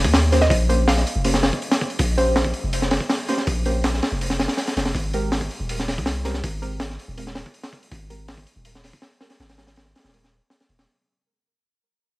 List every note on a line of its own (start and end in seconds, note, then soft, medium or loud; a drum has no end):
0.04 0.49 D#2 medium
0.04 kick medium
0.14 snare loud
0.14 open hi-hat medium
0.32 0.42 A#3 medium
0.32 0.42 C#4 medium
0.32 0.42 G4 medium
0.32 0.42 C5 loud
0.32 snare soft
0.32 open hi-hat medium
0.41 0.47 D#5 medium
0.41 snare soft
0.50 1.05 A#1 loud
0.50 0.57 D#5 medium
0.50 kick loud
0.50 open hi-hat medium
0.69 0.79 A#3 medium
0.69 0.79 C#4 medium
0.69 0.79 G4 medium
0.69 0.79 C5 medium
0.69 open hi-hat medium
0.88 1.25 F5 medium
0.88 snare loud
0.88 open hi-hat medium
0.97 snare soft
1.07 open hi-hat medium
1.16 1.51 F1 medium
1.25 1.41 A#3 medium
1.25 1.41 C#4 medium
1.25 1.41 G4 medium
1.25 1.41 C5 medium
1.25 open hi-hat medium
1.34 snare medium
1.43 snare loud
1.43 open hi-hat medium
1.53 kick medium
1.62 open hi-hat medium
1.71 snare loud
1.71 open hi-hat medium
1.81 kick medium
1.90 open hi-hat medium
1.99 2.53 A#1 loud
1.99 kick loud
1.99 open hi-hat medium
2.17 2.34 A#3 loud
2.17 2.33 C#4 loud
2.17 2.33 G4 medium
2.17 2.33 C5 loud
2.17 open hi-hat medium
2.36 snare loud
2.36 open hi-hat medium
2.44 kick medium
2.54 open hi-hat medium
2.64 2.99 F1 medium
2.73 open hi-hat medium
2.82 snare medium
2.91 snare loud
2.91 open hi-hat medium
3.01 kick medium
3.10 snare loud
3.10 open hi-hat medium
3.29 3.39 A#3 medium
3.29 3.39 C#4 medium
3.29 3.39 G4 medium
3.29 3.39 C5 loud
3.29 snare soft
3.29 open hi-hat medium
3.38 snare soft
3.47 4.01 A#1 loud
3.47 kick loud
3.47 open hi-hat medium
3.65 3.76 A#3 medium
3.65 3.76 C#4 medium
3.65 3.76 G4 medium
3.65 3.76 C5 medium
3.65 open hi-hat medium
3.84 snare loud
3.84 open hi-hat medium
3.94 snare medium
4.03 snare medium
4.03 open hi-hat medium
4.12 4.47 F1 medium
4.21 open hi-hat medium
4.30 snare medium
4.40 snare loud
4.40 open hi-hat medium
4.48 snare loud
4.48 open hi-hat medium
4.57 snare medium
4.57 open hi-hat medium
4.67 snare medium
4.67 open hi-hat medium
4.77 4.93 F1 medium
4.77 snare loud
4.77 open hi-hat medium
4.85 snare medium
4.85 open hi-hat medium
4.95 5.49 G#1 loud
4.95 kick loud
4.95 open hi-hat medium
5.13 5.30 G#3 loud
5.13 5.30 C4 medium
5.13 5.30 G4 medium
5.13 5.30 A#4 loud
5.13 open hi-hat medium
5.32 snare loud
5.32 open hi-hat medium
5.41 kick medium
5.51 open hi-hat medium
5.60 6.00 D#1 medium
5.69 open hi-hat medium
5.80 snare soft
5.88 snare medium
5.88 open hi-hat medium
5.98 6.42 C2 medium
5.98 kick medium
6.06 snare loud
6.06 open hi-hat medium
6.25 6.35 G#3 medium
6.25 6.35 C4 medium
6.25 6.35 G4 medium
6.25 6.35 A#4 medium
6.25 snare soft
6.25 open hi-hat medium
6.34 snare soft
6.44 6.98 G#1 loud
6.44 kick loud
6.44 open hi-hat medium
6.62 6.72 G#3 medium
6.62 6.72 C4 medium
6.62 6.72 G4 medium
6.62 6.72 A#4 medium
6.62 open hi-hat medium
6.80 snare loud
6.80 open hi-hat medium
6.90 snare soft
6.99 open hi-hat medium
7.08 7.44 D#1 medium
7.17 7.34 G#3 medium
7.17 7.34 C4 medium
7.17 7.34 G4 medium
7.17 7.34 A#4 medium
7.17 open hi-hat medium
7.27 snare soft
7.35 snare medium
7.35 open hi-hat medium
7.46 kick medium
7.54 open hi-hat medium
7.63 snare loud
7.63 open hi-hat medium
7.73 kick medium
7.83 open hi-hat medium
7.91 8.46 G#1 loud
7.91 kick loud
7.91 open hi-hat medium
8.10 8.26 G#3 loud
8.10 8.26 C4 medium
8.10 8.26 G4 medium
8.10 8.26 A#4 loud
8.10 open hi-hat medium
8.28 snare loud
8.28 open hi-hat medium
8.38 kick medium
8.47 open hi-hat medium
8.56 8.92 D#1 medium
8.65 open hi-hat medium
8.75 snare soft
8.84 snare soft
8.84 open hi-hat medium
8.93 kick medium
9.02 snare loud
9.02 open hi-hat medium
9.21 9.31 G#3 medium
9.21 9.31 C4 medium
9.21 9.31 G4 medium
9.21 9.31 A#4 medium
9.21 snare medium
9.21 open hi-hat medium
9.30 snare medium
9.30 open hi-hat medium
9.40 9.94 G#1 loud
9.40 snare loud
9.40 open hi-hat medium
9.49 snare loud
9.49 open hi-hat medium
9.58 9.68 G#3 medium
9.58 9.68 C4 medium
9.58 9.68 G4 medium
9.58 9.68 A#4 medium
9.58 snare medium
9.58 open hi-hat medium
9.67 snare medium
9.67 open hi-hat medium
9.76 snare loud
9.76 open hi-hat medium
9.86 snare soft
9.96 snare medium
9.96 open hi-hat medium
9.99 snare medium
9.99 open hi-hat medium
10.04 10.40 D#1 medium
10.04 snare medium
10.04 open hi-hat medium
10.09 snare medium
10.09 open hi-hat medium
10.14 10.30 G#3 medium
10.14 10.30 C4 medium
10.14 10.30 G4 medium
10.14 10.30 A#4 medium
10.14 open hi-hat medium
10.24 snare medium
10.50 snare loud
10.50 open hi-hat medium
10.60 snare medium
10.60 open hi-hat medium
10.69 10.86 D#1 medium
10.69 open hi-hat soft
10.79 snare medium
10.79 open hi-hat medium